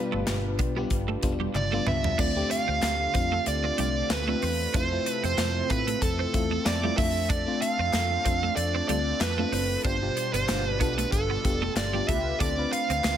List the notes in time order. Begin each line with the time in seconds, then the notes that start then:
Already playing: B2 G3 B3 D4 F4 G4 B4
0.12 G1 A3
0.27 G1, muted clean electric guitar stroke, snare, clap, closed hi-hat
0.59 B1 B3, kick, closed hi-hat
0.76 G3 B3 D4 G4
0.90 G1, kick, closed hi-hat
1.08 A3
1.23 F1 G3 B3 D4 F4, muted clean electric guitar stroke, kick, closed hi-hat
1.40 G3
1.54 G1 D5, muted clean electric guitar stroke, clap, high tom
1.72 G3 A3 B3 D4 F4
1.87 C#2 B3 E5, mid tom
2.04 floor tom
2.18 D2 D3 A3 C4 D4 F4 D5, kick, crash
2.36 A3 C4 D4 G4
2.50 F5, muted clean electric guitar stroke, closed hi-hat
2.68 D2 C4
2.82 D2, muted clean electric guitar stroke, snare, clap, closed hi-hat, tambourine
3.14 F2 A3 C4 D4 F4, kick, closed hi-hat
3.32 A3
3.46 D2 D5, muted clean electric guitar stroke, closed hi-hat
3.64 C4
3.78 C2 G3 A3 C4 D4 F4 D5, closed hi-hat
4.10 D2 B4, muted clean electric guitar stroke, snare, clap, closed hi-hat, tambourine
4.27 A3 C4 D4 F4
4.42 E2 C4, open hi-hat
4.74 F2 C3 A3 C4 D4 E4 F4 A4 C5, kick, closed hi-hat
4.92 A3 C4 E4 F4
5.06 B4, muted clean electric guitar stroke, closed hi-hat
5.24 F2 C4 C5, closed hi-hat
5.38 F2, muted clean electric guitar stroke, snare, clap, closed hi-hat, tambourine
5.70 A2 A3 C4 E4 F4 B4, kick, closed hi-hat
5.87 A3, closed hi-hat
6.02 F2 A4, kick, closed hi-hat
6.19 C4
6.34 E2 A3 C4 E4 F4, muted clean electric guitar stroke, kick, closed hi-hat
6.51 A3
6.65 F2 D5, muted clean electric guitar stroke, snare, clap, closed hi-hat, tambourine
6.83 G3 A3 C4 E4 F4
6.97 F2 A3 C4 D4 F4 E5, kick, open hi-hat
7.29 D4 D5, kick, closed hi-hat
7.46 A3 C4 D4 F4
7.61 F5, muted clean electric guitar stroke, closed hi-hat
7.79 F2 C4
7.93 F2, muted clean electric guitar stroke, snare, clap, closed hi-hat, tambourine
8.25 F2 A3 C4 D4 F4, kick, closed hi-hat
8.43 A3
8.56 F2 D5, muted clean electric guitar stroke, closed hi-hat
8.75 C4
8.88 D2 G3 A3 C4 D4 F4 D5, closed hi-hat
9.20 F2 B4, muted clean electric guitar stroke, snare, clap, closed hi-hat, tambourine
9.38 A3 C4 D4 F4
9.52 F#1 C4, open hi-hat
9.84 G1 B2 G3 B3 D4 F4 G4 C5, kick, closed hi-hat
10.02 B2 D4 F4 G4
10.17 muted clean electric guitar stroke, closed hi-hat
10.33 G1 B3 C5, closed hi-hat
10.48 G1 B3 D4 F4, muted clean electric guitar stroke, snare, clap, closed hi-hat, tambourine
10.69 B4
10.80 B1 B3 D4 F4 A4 B4, kick, closed hi-hat
10.98 A3, closed hi-hat
11.12 G1 A4, kick, closed hi-hat
11.30 B3
11.44 F1 B3 D4 F4 G4, muted clean electric guitar stroke, kick, closed hi-hat
11.62 A3
11.76 G1 D5, muted clean electric guitar stroke, snare, clap, closed hi-hat, tambourine
11.93 G3 B3 D4 F4 G4
12.08 C#2 A3 F4 G4 B4 E5, kick, closed hi-hat
12.40 D2 A3 C4 D4 F4 A4 D5, kick, closed hi-hat
12.57 C4 D4 F4 B4
12.72 F5, muted clean electric guitar stroke, closed hi-hat
12.90 D2 C4, closed hi-hat
13.04 D2, muted clean electric guitar stroke, snare, clap, closed hi-hat, tambourine